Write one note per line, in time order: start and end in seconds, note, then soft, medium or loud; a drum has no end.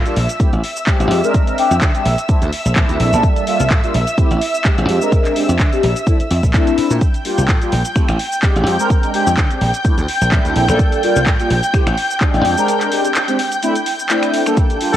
0.00 7.02 E5 medium
0.00 7.02 E6 medium
0.05 0.15 G3 medium
0.05 0.15 A#3 medium
0.05 0.15 D4 medium
0.05 0.15 F4 medium
0.05 closed hi-hat soft
0.05 shaker soft
0.16 0.26 A#1 medium
0.16 open hi-hat medium
0.29 closed hi-hat soft
0.29 shaker medium
0.39 0.51 A3 medium
0.39 0.51 C4 medium
0.39 0.51 E4 medium
0.39 0.51 G4 loud
0.39 muted slap bass stroke soft
0.39 kick loud
0.39 closed hi-hat medium
0.39 shaker medium
0.53 0.61 A1 medium
0.53 closed hi-hat medium
0.53 shaker soft
0.64 open hi-hat loud
0.77 shaker medium
0.87 1.20 G#3 medium
0.87 1.21 C4 medium
0.87 1.21 D4 medium
0.87 1.21 G4 medium
0.87 kick loud
0.87 clap loud
0.87 closed hi-hat medium
0.87 shaker medium
1.00 1.08 A1 medium
1.00 closed hi-hat medium
1.00 shaker soft
1.11 1.20 F2 medium
1.11 open hi-hat medium
1.23 1.55 G#3 loud
1.23 1.55 C4 medium
1.23 1.56 D4 medium
1.23 1.56 A#4 loud
1.23 shaker medium
1.34 kick loud
1.34 closed hi-hat medium
1.34 shaker soft
1.47 closed hi-hat soft
1.47 shaker soft
1.58 1.75 G#3 medium
1.58 1.75 C4 medium
1.58 1.75 D4 medium
1.58 1.75 G4 medium
1.58 open hi-hat loud
1.71 1.79 F2 medium
1.71 shaker medium
1.81 1.91 D3 medium
1.81 kick loud
1.81 clap loud
1.81 closed hi-hat medium
1.81 shaker medium
1.94 2.04 G#3 medium
1.94 2.04 C4 medium
1.94 2.04 D4 medium
1.94 2.04 G4 medium
1.94 closed hi-hat soft
1.94 shaker soft
2.05 2.15 A#1 medium
2.05 open hi-hat medium
2.18 closed hi-hat soft
2.18 shaker medium
2.28 2.40 A3 medium
2.28 2.40 C4 medium
2.28 2.40 D4 medium
2.28 2.40 E4 loud
2.28 kick loud
2.28 closed hi-hat medium
2.28 shaker soft
2.42 2.50 D2 medium
2.42 closed hi-hat medium
2.42 shaker soft
2.52 open hi-hat loud
2.65 2.82 A#1 medium
2.65 shaker medium
2.76 3.09 A3 medium
2.76 3.09 C4 medium
2.76 3.10 D4 medium
2.76 3.10 E4 medium
2.76 kick loud
2.76 clap loud
2.76 closed hi-hat medium
2.76 shaker medium
2.89 2.97 D2 medium
2.89 closed hi-hat medium
2.89 shaker soft
3.00 3.09 A#1 medium
3.00 open hi-hat medium
3.12 3.21 A#1 medium
3.12 3.44 G3 medium
3.12 3.44 A#3 medium
3.12 3.45 D4 medium
3.12 3.45 A4 loud
3.12 shaker medium
3.23 kick loud
3.23 closed hi-hat medium
3.23 shaker soft
3.36 closed hi-hat soft
3.36 shaker soft
3.47 3.64 G3 medium
3.47 3.64 A#3 medium
3.47 3.64 D4 medium
3.47 3.64 F4 medium
3.47 open hi-hat loud
3.60 3.68 C2 loud
3.60 shaker medium
3.70 3.80 A2 medium
3.70 kick loud
3.70 clap loud
3.70 closed hi-hat medium
3.70 shaker medium
3.83 3.92 G3 medium
3.83 3.93 A#3 medium
3.83 3.93 D4 medium
3.83 3.93 F4 medium
3.83 closed hi-hat soft
3.83 shaker soft
3.94 4.04 A#1 medium
3.94 open hi-hat medium
4.07 closed hi-hat soft
4.07 shaker medium
4.18 4.29 A3 medium
4.18 4.29 C4 medium
4.18 4.29 E4 medium
4.18 4.29 G4 loud
4.18 muted slap bass stroke soft
4.18 kick loud
4.18 closed hi-hat medium
4.18 shaker soft
4.31 4.39 A1 medium
4.31 closed hi-hat soft
4.31 shaker soft
4.42 open hi-hat loud
4.55 shaker medium
4.65 4.98 G#3 medium
4.65 4.98 C4 medium
4.65 4.99 D4 medium
4.65 4.99 G4 medium
4.65 kick loud
4.65 clap loud
4.65 closed hi-hat medium
4.65 shaker medium
4.78 4.86 A1 loud
4.78 closed hi-hat soft
4.78 shaker soft
4.89 4.98 F2 medium
4.89 open hi-hat medium
5.01 5.33 G#3 loud
5.01 5.33 C4 medium
5.01 5.33 D4 medium
5.01 5.34 A#4 loud
5.01 shaker medium
5.12 kick loud
5.12 closed hi-hat medium
5.12 shaker medium
5.25 clap soft
5.25 closed hi-hat soft
5.25 shaker soft
5.36 5.53 G#3 medium
5.36 5.53 C4 medium
5.36 5.53 D4 medium
5.36 5.53 G4 medium
5.36 open hi-hat loud
5.49 5.57 F2 medium
5.49 shaker medium
5.59 5.69 D3 medium
5.59 kick loud
5.59 clap loud
5.59 closed hi-hat medium
5.59 shaker medium
5.72 5.81 G#3 medium
5.72 5.82 C4 medium
5.72 5.82 D4 medium
5.72 5.82 G4 medium
5.72 closed hi-hat soft
5.72 shaker soft
5.83 5.93 A#1 medium
5.83 open hi-hat medium
5.96 closed hi-hat soft
5.96 shaker medium
6.06 6.18 A3 medium
6.06 6.18 C4 medium
6.06 6.18 D4 medium
6.06 6.18 E4 loud
6.06 kick loud
6.06 closed hi-hat medium
6.06 shaker soft
6.20 muted slap bass stroke soft
6.20 closed hi-hat soft
6.20 shaker soft
6.31 6.40 F2 medium
6.31 open hi-hat loud
6.43 6.51 A#1 medium
6.43 kick medium
6.43 shaker medium
6.54 7.00 A3 medium
6.54 7.00 C4 medium
6.54 7.00 D4 medium
6.54 7.00 E4 medium
6.54 kick loud
6.54 clap loud
6.54 closed hi-hat medium
6.54 shaker medium
6.67 closed hi-hat soft
6.67 shaker soft
6.78 muted slap bass stroke soft
6.78 open hi-hat medium
6.91 6.99 A#2 medium
6.91 closed hi-hat soft
6.91 shaker medium
7.01 14.56 G5 medium
7.01 14.56 G6 medium
7.01 kick loud
7.01 closed hi-hat medium
7.01 shaker medium
7.14 closed hi-hat soft
7.14 shaker soft
7.24 7.42 G3 medium
7.24 7.42 A#3 medium
7.24 7.42 D4 medium
7.24 7.42 F4 medium
7.24 open hi-hat loud
7.38 7.46 C2 medium
7.38 shaker medium
7.48 7.58 A2 medium
7.48 kick loud
7.48 clap loud
7.48 closed hi-hat medium
7.48 shaker medium
7.61 7.70 G3 medium
7.61 7.71 A#3 medium
7.61 7.71 D4 medium
7.61 7.71 F4 medium
7.61 closed hi-hat soft
7.61 shaker soft
7.72 7.82 A#1 medium
7.72 open hi-hat medium
7.85 closed hi-hat soft
7.85 shaker medium
7.95 8.07 A3 medium
7.95 8.07 C4 medium
7.95 8.07 E4 medium
7.95 8.07 G4 loud
7.95 finger snap medium
7.95 muted slap bass stroke soft
7.95 kick loud
7.95 closed hi-hat medium
7.95 shaker medium
8.09 8.17 A1 medium
8.09 finger snap medium
8.09 closed hi-hat medium
8.09 shaker soft
8.19 open hi-hat loud
8.33 shaker medium
8.43 8.76 G#3 medium
8.43 8.76 C4 medium
8.43 8.76 D4 medium
8.43 8.77 G4 medium
8.43 kick loud
8.43 clap loud
8.43 closed hi-hat medium
8.43 shaker medium
8.56 8.64 A1 medium
8.56 closed hi-hat soft
8.56 shaker soft
8.67 8.76 F2 medium
8.67 open hi-hat medium
8.79 9.11 G#3 loud
8.79 9.11 C4 medium
8.79 9.11 D4 medium
8.79 9.12 A#4 loud
8.79 shaker medium
8.90 kick loud
8.90 closed hi-hat medium
8.90 shaker medium
9.03 closed hi-hat soft
9.03 shaker soft
9.14 9.31 G#3 medium
9.14 9.31 C4 medium
9.14 9.31 D4 medium
9.14 9.31 G4 medium
9.14 open hi-hat loud
9.27 9.35 F2 medium
9.27 shaker medium
9.37 9.47 D3 medium
9.37 kick loud
9.37 clap loud
9.37 closed hi-hat medium
9.37 shaker medium
9.50 9.60 G#3 medium
9.50 9.60 C4 medium
9.50 9.60 D4 medium
9.50 9.60 G4 medium
9.50 closed hi-hat soft
9.50 shaker soft
9.61 9.71 A#1 medium
9.61 open hi-hat medium
9.74 closed hi-hat soft
9.74 shaker medium
9.84 9.96 A3 medium
9.84 9.96 C4 medium
9.84 9.96 D4 medium
9.84 9.96 E4 loud
9.84 kick loud
9.84 closed hi-hat medium
9.84 shaker medium
9.98 10.06 D2 medium
9.98 closed hi-hat medium
9.98 shaker soft
10.08 open hi-hat loud
10.21 10.38 A#1 medium
10.21 shaker medium
10.31 10.65 A3 medium
10.31 10.65 C4 medium
10.31 10.65 D4 medium
10.31 10.66 E4 medium
10.31 kick loud
10.31 clap loud
10.31 closed hi-hat medium
10.31 shaker medium
10.45 10.53 D2 medium
10.45 closed hi-hat soft
10.45 shaker soft
10.56 10.65 A#1 medium
10.56 open hi-hat medium
10.68 10.77 A#1 medium
10.68 11.00 G3 medium
10.68 11.00 A#3 medium
10.68 11.00 D4 medium
10.68 11.01 A4 loud
10.68 finger snap medium
10.68 shaker medium
10.79 kick loud
10.79 closed hi-hat medium
10.79 shaker medium
10.92 closed hi-hat soft
10.92 shaker soft
11.03 11.20 G3 medium
11.03 11.20 A#3 medium
11.03 11.20 D4 medium
11.03 11.20 F4 medium
11.03 open hi-hat medium
11.16 11.24 C2 medium
11.16 shaker medium
11.26 11.36 A2 medium
11.26 kick loud
11.26 clap loud
11.26 closed hi-hat medium
11.26 shaker medium
11.39 11.49 G3 medium
11.39 11.49 A#3 medium
11.39 11.49 D4 medium
11.39 11.49 F4 medium
11.39 closed hi-hat medium
11.39 shaker soft
11.50 11.60 A#1 medium
11.50 open hi-hat medium
11.63 closed hi-hat soft
11.63 shaker medium
11.73 11.85 A3 medium
11.73 11.85 C4 medium
11.73 11.85 E4 medium
11.73 11.85 G4 loud
11.73 finger snap medium
11.73 muted slap bass stroke soft
11.73 kick loud
11.73 closed hi-hat medium
11.73 shaker medium
11.87 11.95 A1 loud
11.87 finger snap medium
11.87 closed hi-hat medium
11.87 shaker soft
11.98 open hi-hat loud
12.11 shaker medium
12.21 12.54 G#3 medium
12.21 12.54 C4 medium
12.21 12.55 D4 medium
12.21 12.55 G4 medium
12.21 kick loud
12.21 clap loud
12.21 closed hi-hat medium
12.21 shaker medium
12.34 12.42 A1 loud
12.34 closed hi-hat medium
12.34 shaker soft
12.45 12.54 F2 medium
12.45 open hi-hat medium
12.57 12.89 G#3 medium
12.57 12.89 C4 medium
12.57 12.89 D4 medium
12.57 12.90 A#4 loud
12.57 shaker medium
12.68 closed hi-hat medium
12.68 shaker medium
12.81 clap soft
12.81 closed hi-hat medium
12.81 shaker soft
12.91 13.09 G#3 medium
12.91 13.09 C4 medium
12.91 13.09 D4 medium
12.91 13.09 G4 medium
12.91 open hi-hat loud
13.05 closed hi-hat soft
13.05 shaker medium
13.15 clap loud
13.15 closed hi-hat medium
13.15 shaker medium
13.28 13.37 G#3 medium
13.28 13.38 C4 medium
13.28 13.38 D4 medium
13.28 13.38 G4 medium
13.28 closed hi-hat soft
13.28 shaker soft
13.39 open hi-hat medium
13.52 closed hi-hat soft
13.52 shaker medium
13.62 13.74 A3 loud
13.62 13.74 C4 medium
13.62 13.74 D4 medium
13.62 13.74 E4 loud
13.62 closed hi-hat medium
13.62 shaker medium
13.75 closed hi-hat medium
13.75 shaker soft
13.86 open hi-hat medium
13.99 shaker medium
14.10 14.43 A3 medium
14.10 14.43 C4 medium
14.10 14.43 D4 medium
14.10 14.44 E4 medium
14.10 clap loud
14.10 closed hi-hat medium
14.10 shaker medium
14.23 finger snap medium
14.23 closed hi-hat medium
14.23 shaker soft
14.34 open hi-hat medium
14.46 14.78 G3 loud
14.46 14.78 A#3 medium
14.46 14.78 D4 medium
14.46 14.78 A4 loud
14.46 finger snap medium
14.46 closed hi-hat soft
14.46 shaker medium
14.57 14.97 G5 medium
14.57 14.97 G6 medium
14.57 kick loud
14.57 closed hi-hat medium
14.57 shaker medium
14.70 closed hi-hat medium
14.70 shaker soft
14.80 14.97 G3 medium
14.80 14.97 A#3 medium
14.80 14.97 D4 medium
14.80 14.97 F4 medium
14.80 open hi-hat loud
14.93 14.97 C2 loud
14.93 14.97 A4 medium